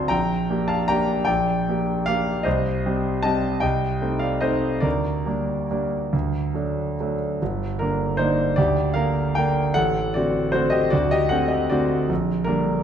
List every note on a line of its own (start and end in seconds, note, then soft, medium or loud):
0.00 0.14 D2 medium
0.00 0.14 C4 soft
0.00 0.14 D4 soft
0.00 0.14 F#4 medium
0.00 0.14 A5 medium
0.00 0.14 C6 loud
0.08 0.48 A#1 medium
0.08 0.64 G5 medium
0.08 0.67 A#5 medium
0.50 0.85 A#3 soft
0.50 0.85 D4 soft
0.50 0.85 G4 soft
0.68 0.87 F5 medium
0.68 0.88 A5 medium
0.88 1.24 A#3 soft
0.88 1.24 D4 soft
0.88 1.25 G4 soft
0.88 1.23 G5 medium
0.88 1.27 A#5 medium
1.25 1.66 A#1 medium
1.25 2.02 D5 medium
1.25 2.05 G5 medium
1.69 2.04 A#3 soft
1.69 2.04 D4 soft
1.69 2.04 G4 soft
2.06 2.43 A#3 soft
2.06 2.43 D4 soft
2.06 2.43 G4 medium
2.06 2.43 D5 medium
2.06 2.45 F5 medium
2.43 2.84 C2 medium
2.43 3.20 C5 medium
2.43 3.22 D#5 medium
2.85 3.21 G3 soft
2.85 3.21 C4 soft
2.85 3.21 G4 soft
3.23 3.59 G3 soft
3.23 3.60 C4 soft
3.23 3.60 G4 medium
3.23 3.60 D#5 medium
3.23 3.62 A5 medium
3.60 4.00 C2 medium
3.60 4.17 D#5 medium
3.60 4.21 G5 medium
4.02 4.39 A3 soft
4.02 4.39 C4 soft
4.02 4.40 D#4 soft
4.19 4.41 D5 medium
4.19 4.42 F5 medium
4.41 4.80 A3 soft
4.41 4.80 C4 soft
4.41 4.81 D#4 soft
4.41 4.81 C5 medium
4.41 4.83 D#5 medium
4.80 5.25 D2 medium
4.80 7.14 A#4 medium
4.80 7.18 D5 medium
5.26 5.66 G3 soft
5.26 5.66 A#3 soft
5.26 5.67 D4 soft
5.71 6.09 G3 soft
5.71 6.09 A#3 soft
5.71 6.09 D4 soft
6.13 6.53 D2 medium
6.54 6.94 F#3 soft
6.54 6.95 A3 soft
6.54 6.95 D4 soft
7.00 7.37 F#3 soft
7.00 7.38 A3 soft
7.00 7.38 D4 soft
7.42 7.79 G1 medium
7.79 8.16 D3 soft
7.79 8.16 A#3 soft
7.79 8.17 D4 soft
7.79 8.19 A#4 medium
8.17 8.54 D3 soft
8.17 8.54 A#3 soft
8.17 8.54 D4 soft
8.17 8.55 D#4 medium
8.17 8.57 C5 medium
8.56 8.95 D2 medium
8.56 8.93 G4 medium
8.56 8.95 D5 medium
8.94 9.32 D3 soft
8.94 9.33 A#3 soft
8.94 9.33 D4 soft
8.94 9.33 A#4 medium
8.94 9.35 F5 medium
9.35 9.72 D3 soft
9.35 9.73 A#3 soft
9.35 9.73 D4 soft
9.35 9.73 A#4 medium
9.35 9.75 G5 medium
9.74 10.13 A1 medium
9.74 10.11 A4 medium
9.74 10.14 F#5 loud
10.14 10.50 D3 soft
10.14 10.51 A3 soft
10.14 10.51 C4 soft
10.14 10.51 F#4 medium
10.14 10.53 D5 medium
10.52 10.89 D3 soft
10.52 10.89 A3 soft
10.52 10.89 C4 medium
10.52 10.71 F#4 medium
10.52 10.72 C5 medium
10.70 10.90 G4 medium
10.70 10.91 D#5 medium
10.90 11.30 D2 medium
10.90 11.10 F#4 medium
10.90 11.10 D5 medium
11.11 11.30 G4 medium
11.11 11.31 D#5 medium
11.29 11.67 D3 soft
11.29 11.67 A3 soft
11.29 11.67 C4 soft
11.29 11.49 A4 medium
11.29 11.50 F#5 medium
11.48 11.69 G4 medium
11.48 11.69 D#5 medium
11.70 12.06 D3 soft
11.70 12.06 A3 medium
11.70 12.06 C4 medium
11.70 12.07 F#4 medium
11.70 12.09 D5 medium
12.09 12.47 A#1 medium
12.44 12.83 D3 soft
12.44 12.83 G3 soft
12.44 12.83 A#3 soft
12.44 12.83 D4 medium
12.44 12.83 A#4 medium